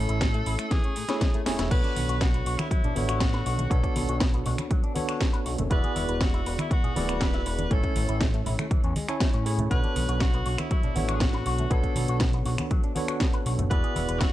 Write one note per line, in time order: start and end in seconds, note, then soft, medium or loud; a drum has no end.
0.00 0.93 A3 loud
0.00 0.93 C#4 medium
0.00 0.93 E4 medium
0.00 0.73 A4 loud
0.00 0.93 A4 medium
0.00 0.94 C#5 loud
0.09 0.43 A1 medium
0.09 0.15 E4 medium
0.09 closed hi-hat medium
0.21 0.25 A3 medium
0.21 kick loud
0.21 snare loud
0.21 closed hi-hat medium
0.34 0.40 A3 medium
0.34 closed hi-hat soft
0.46 0.57 A1 medium
0.46 0.53 E4 medium
0.46 open hi-hat medium
0.59 0.65 A3 medium
0.59 finger snap medium
0.59 closed hi-hat medium
0.71 0.81 E3 medium
0.71 1.46 G#4 medium
0.71 kick loud
0.71 snare medium
0.71 closed hi-hat medium
0.84 0.93 C#4 medium
0.84 closed hi-hat soft
0.96 1.03 A2 medium
0.96 open hi-hat loud
1.09 1.43 A3 loud
1.09 1.43 C#4 medium
1.09 1.43 E4 medium
1.09 1.18 E4 loud
1.09 1.43 G#4 medium
1.09 1.44 C#5 loud
1.09 snare medium
1.09 closed hi-hat medium
1.21 1.25 G#3 medium
1.21 kick loud
1.21 snare medium
1.21 closed hi-hat medium
1.34 1.40 A3 loud
1.34 closed hi-hat soft
1.46 1.56 E1 soft
1.46 1.68 A3 medium
1.46 1.68 C#4 medium
1.46 1.53 C#4 medium
1.46 1.68 E4 medium
1.46 1.68 G#4 medium
1.46 1.68 C#5 loud
1.46 snare loud
1.46 open hi-hat medium
1.59 1.69 E1 medium
1.59 1.68 E4 medium
1.59 snare medium
1.59 closed hi-hat medium
1.70 1.82 B1 loud
1.70 2.93 B3 medium
1.70 1.81 B3 medium
1.70 2.93 D4 medium
1.70 2.93 F#4 medium
1.70 2.93 A4 medium
1.70 2.18 B4 loud
1.70 2.93 C#5 loud
1.70 kick loud
1.70 closed hi-hat medium
1.70 crash medium
1.84 1.93 D4 medium
1.84 closed hi-hat soft
1.84 muted conga soft
1.96 2.07 B1 medium
1.96 2.03 B3 medium
1.96 open hi-hat loud
1.96 high conga medium
2.08 2.43 B1 loud
2.08 2.15 F#4 medium
2.08 closed hi-hat medium
2.21 2.25 B3 medium
2.21 2.59 F#4 loud
2.21 kick loud
2.21 snare loud
2.21 closed hi-hat medium
2.34 2.40 B3 medium
2.34 closed hi-hat soft
2.46 2.57 B1 medium
2.46 2.53 F#4 medium
2.46 open hi-hat medium
2.58 2.65 B3 medium
2.58 2.70 E4 medium
2.58 finger snap medium
2.58 closed hi-hat medium
2.58 muted conga medium
2.58 high conga medium
2.70 2.81 F#3 medium
2.70 3.22 E4 medium
2.70 kick loud
2.70 closed hi-hat medium
2.84 2.93 D4 medium
2.84 closed hi-hat soft
2.84 low conga medium
2.95 3.43 A1 medium
2.95 3.68 B3 medium
2.95 3.03 B3 medium
2.95 3.68 D4 medium
2.95 3.68 F#4 medium
2.95 3.69 A4 medium
2.95 3.69 C#5 medium
2.95 open hi-hat loud
2.95 high conga medium
3.09 3.18 F#4 medium
3.09 finger snap medium
3.09 closed hi-hat medium
3.20 3.25 B3 medium
3.20 3.72 F#4 loud
3.20 kick loud
3.20 snare loud
3.20 closed hi-hat medium
3.33 3.40 B4 medium
3.33 snare soft
3.33 closed hi-hat soft
3.46 3.67 B1 loud
3.46 3.53 F#4 medium
3.46 open hi-hat loud
3.58 3.62 A3 medium
3.58 closed hi-hat medium
3.58 high conga medium
3.70 3.82 B1 loud
3.70 4.93 B3 medium
3.70 3.81 B3 medium
3.70 4.93 D4 medium
3.70 4.93 F#4 medium
3.70 4.21 A4 medium
3.70 4.93 A4 medium
3.70 4.94 C#5 loud
3.70 kick loud
3.70 closed hi-hat medium
3.83 3.93 D4 medium
3.83 kick medium
3.83 closed hi-hat soft
3.83 muted conga soft
3.96 4.07 B1 medium
3.96 4.03 B3 medium
3.96 open hi-hat loud
3.96 high conga medium
4.09 4.43 B1 loud
4.09 4.15 F#4 medium
4.09 closed hi-hat medium
4.20 4.25 B3 medium
4.20 kick loud
4.20 snare loud
4.20 closed hi-hat medium
4.34 4.40 B3 medium
4.34 closed hi-hat soft
4.46 4.57 B1 medium
4.46 4.53 F#4 medium
4.46 open hi-hat loud
4.46 low conga medium
4.58 4.65 B3 medium
4.58 finger snap medium
4.58 closed hi-hat medium
4.58 muted conga medium
4.58 high conga medium
4.71 4.81 F#3 medium
4.71 kick loud
4.71 closed hi-hat medium
4.84 4.93 D4 medium
4.84 closed hi-hat soft
4.95 5.67 B3 medium
4.95 5.02 B3 medium
4.95 5.68 D4 medium
4.95 5.68 F#4 medium
4.95 5.68 A4 medium
4.95 5.69 C#5 medium
4.95 open hi-hat loud
4.95 high conga loud
5.09 5.18 F#4 medium
5.09 finger snap medium
5.09 closed hi-hat medium
5.21 5.25 B3 medium
5.21 kick loud
5.21 snare loud
5.21 closed hi-hat medium
5.33 5.40 B4 medium
5.33 closed hi-hat soft
5.46 5.57 B1 medium
5.46 5.52 F#4 medium
5.46 open hi-hat loud
5.58 5.69 F#1 medium
5.58 5.62 A3 medium
5.58 closed hi-hat medium
5.58 high conga medium
5.58 low conga loud
5.70 5.82 E1 loud
5.70 6.93 B3 medium
5.70 6.93 E4 medium
5.70 5.81 E4 medium
5.70 6.93 F#4 medium
5.70 6.94 G#4 medium
5.70 6.24 B4 loud
5.70 6.94 D5 loud
5.70 kick loud
5.70 closed hi-hat medium
5.84 5.93 G#4 medium
5.84 closed hi-hat soft
5.84 muted conga soft
5.96 6.07 E1 medium
5.96 6.02 E4 medium
5.96 open hi-hat loud
5.96 high conga medium
6.09 6.43 E1 loud
6.09 6.15 B4 medium
6.09 closed hi-hat soft
6.21 6.25 E4 medium
6.21 6.59 F#4 loud
6.21 kick loud
6.21 snare loud
6.21 closed hi-hat soft
6.34 6.40 E4 medium
6.34 closed hi-hat soft
6.46 6.57 E1 medium
6.46 6.53 B4 medium
6.46 open hi-hat loud
6.59 6.65 E4 medium
6.59 6.71 E4 medium
6.59 finger snap medium
6.59 closed hi-hat medium
6.59 muted conga medium
6.59 high conga medium
6.71 6.81 B3 medium
6.71 7.24 F#4 medium
6.71 kick loud
6.71 closed hi-hat medium
6.84 6.93 G#4 medium
6.84 closed hi-hat soft
6.84 low conga medium
6.95 7.43 D1 medium
6.95 7.68 B3 medium
6.95 7.68 E4 medium
6.95 7.03 E4 medium
6.95 7.68 F#4 medium
6.95 7.68 G#4 medium
6.95 7.69 D5 medium
6.95 open hi-hat loud
6.95 high conga medium
7.09 7.18 B4 medium
7.09 finger snap medium
7.09 closed hi-hat medium
7.21 7.25 E4 medium
7.21 7.74 B4 loud
7.21 kick loud
7.21 snare loud
7.21 closed hi-hat medium
7.33 7.40 E5 medium
7.33 snare soft
7.33 closed hi-hat soft
7.46 7.67 E1 loud
7.46 7.53 B4 medium
7.46 open hi-hat loud
7.59 7.63 D4 medium
7.59 closed hi-hat medium
7.59 high conga medium
7.70 7.82 A1 loud
7.70 8.93 A3 medium
7.70 7.81 A3 medium
7.70 8.93 C#4 medium
7.70 8.93 E4 medium
7.70 8.93 A4 medium
7.70 8.22 A4 medium
7.70 8.94 C#5 loud
7.70 kick loud
7.70 closed hi-hat soft
7.83 7.93 C#4 medium
7.83 kick medium
7.83 closed hi-hat soft
7.83 muted conga soft
7.96 8.07 A1 medium
7.96 8.02 A3 medium
7.96 open hi-hat loud
7.96 high conga medium
8.09 8.43 A1 loud
8.09 8.15 E4 medium
8.09 closed hi-hat soft
8.21 8.25 A3 medium
8.21 kick loud
8.21 snare loud
8.21 closed hi-hat soft
8.34 8.40 A3 medium
8.34 closed hi-hat soft
8.46 8.57 A1 medium
8.46 8.53 E4 medium
8.46 open hi-hat medium
8.46 low conga medium
8.59 8.65 A3 medium
8.59 finger snap medium
8.59 closed hi-hat soft
8.59 muted conga medium
8.59 high conga medium
8.71 8.81 E3 medium
8.71 kick loud
8.71 closed hi-hat soft
8.84 8.94 E2 loud
8.84 8.93 C#4 medium
8.84 closed hi-hat soft
8.96 9.06 G#3 medium
8.96 open hi-hat loud
8.96 high conga loud
9.09 9.43 C#4 medium
9.09 9.43 E4 medium
9.09 9.15 A4 medium
9.09 9.43 C#5 loud
9.09 9.43 G#5 medium
9.09 finger snap medium
9.09 closed hi-hat soft
9.20 9.27 A3 medium
9.20 kick loud
9.20 snare loud
9.20 closed hi-hat medium
9.33 9.68 A2 medium
9.33 9.43 C#4 loud
9.33 closed hi-hat soft
9.46 9.68 A3 medium
9.46 9.68 C#4 medium
9.46 9.50 C#4 medium
9.46 9.68 E4 medium
9.46 9.68 G#4 medium
9.46 9.68 C#5 loud
9.46 open hi-hat loud
9.58 9.63 A3 medium
9.58 closed hi-hat medium
9.58 high conga medium
9.58 low conga medium
9.70 9.82 B1 loud
9.70 10.93 B3 medium
9.70 9.81 B3 medium
9.70 10.93 D4 medium
9.70 10.93 F#4 medium
9.70 10.93 A4 medium
9.70 10.23 B4 loud
9.70 10.94 C#5 loud
9.70 kick loud
9.70 closed hi-hat soft
9.84 9.93 D4 medium
9.84 closed hi-hat soft
9.84 muted conga soft
9.96 10.07 B1 medium
9.96 10.03 B3 medium
9.96 open hi-hat loud
9.96 high conga medium
10.09 10.43 B1 loud
10.09 10.15 F#4 medium
10.09 closed hi-hat medium
10.20 10.25 B3 medium
10.20 10.60 F#4 loud
10.20 kick loud
10.20 snare loud
10.20 closed hi-hat medium
10.34 10.40 B3 medium
10.34 closed hi-hat soft
10.46 10.57 B1 medium
10.46 10.52 F#4 medium
10.46 open hi-hat medium
10.58 10.65 B3 medium
10.58 10.71 E4 medium
10.58 finger snap medium
10.58 closed hi-hat medium
10.58 muted conga medium
10.58 high conga medium
10.71 10.81 F#3 medium
10.71 11.16 E4 medium
10.71 kick loud
10.71 closed hi-hat soft
10.83 10.93 D4 medium
10.83 closed hi-hat soft
10.83 low conga medium
10.95 11.43 A1 medium
10.95 11.68 B3 medium
10.95 11.03 B3 medium
10.95 11.68 D4 medium
10.95 11.68 F#4 medium
10.95 11.68 A4 medium
10.95 11.69 C#5 loud
10.95 open hi-hat loud
10.95 high conga medium
11.09 11.18 F#4 medium
11.09 finger snap medium
11.09 closed hi-hat soft
11.14 11.23 G#4 medium
11.20 11.25 B3 medium
11.20 11.73 F#4 medium
11.20 kick loud
11.20 snare loud
11.20 closed hi-hat medium
11.33 11.40 B4 medium
11.33 snare soft
11.33 closed hi-hat soft
11.46 11.67 B1 loud
11.46 11.53 F#4 medium
11.46 open hi-hat loud
11.58 11.63 A3 medium
11.58 closed hi-hat medium
11.58 high conga medium
11.70 11.82 B1 loud
11.70 12.93 B3 medium
11.70 11.81 B3 medium
11.70 12.93 D4 medium
11.70 12.93 F#4 medium
11.70 12.21 A4 medium
11.70 12.94 A4 medium
11.70 12.94 C#5 loud
11.70 kick loud
11.70 closed hi-hat medium
11.83 11.93 D4 medium
11.83 kick medium
11.83 closed hi-hat soft
11.83 muted conga soft
11.96 12.07 B1 medium
11.96 12.03 B3 medium
11.96 open hi-hat loud
11.96 high conga medium
12.08 12.43 B1 loud
12.08 12.15 F#4 medium
12.08 closed hi-hat medium
12.20 12.25 B3 medium
12.20 kick loud
12.20 snare loud
12.20 closed hi-hat medium
12.33 12.40 B3 medium
12.33 closed hi-hat soft
12.46 12.57 B1 medium
12.46 12.52 F#4 medium
12.46 open hi-hat medium
12.46 low conga medium
12.58 12.65 B3 medium
12.58 finger snap medium
12.58 closed hi-hat medium
12.58 muted conga medium
12.58 high conga medium
12.71 12.80 F#3 medium
12.71 kick loud
12.71 closed hi-hat medium
12.84 12.93 D4 medium
12.84 closed hi-hat soft
12.95 13.68 B3 medium
12.95 13.03 B3 medium
12.95 13.68 D4 medium
12.95 13.68 F#4 medium
12.95 13.68 A4 medium
12.95 13.69 C#5 medium
12.95 open hi-hat loud
12.95 high conga medium
13.08 13.18 F#4 medium
13.08 finger snap medium
13.08 closed hi-hat medium
13.20 13.25 B3 medium
13.20 kick loud
13.20 snare loud
13.20 closed hi-hat medium
13.33 13.40 B4 medium
13.33 closed hi-hat soft
13.46 13.57 B1 medium
13.46 13.53 F#4 medium
13.46 open hi-hat medium
13.58 13.69 F#1 medium
13.58 13.62 A3 medium
13.58 closed hi-hat medium
13.58 high conga medium
13.58 low conga medium
13.70 13.82 E1 loud
13.70 14.33 B3 medium
13.70 14.33 E4 medium
13.70 13.81 E4 medium
13.70 14.33 F#4 medium
13.70 14.33 G#4 medium
13.70 14.21 B4 loud
13.70 14.33 D5 loud
13.70 kick loud
13.70 closed hi-hat medium
13.83 13.93 G#4 medium
13.83 closed hi-hat soft
13.83 muted conga soft
13.96 14.07 E1 medium
13.96 14.02 E4 medium
13.96 open hi-hat loud
13.96 high conga medium
14.09 14.33 E1 loud
14.09 14.15 B4 medium
14.09 closed hi-hat medium
14.20 14.25 E4 medium
14.20 14.33 F#4 loud
14.20 kick loud
14.20 snare loud
14.20 closed hi-hat medium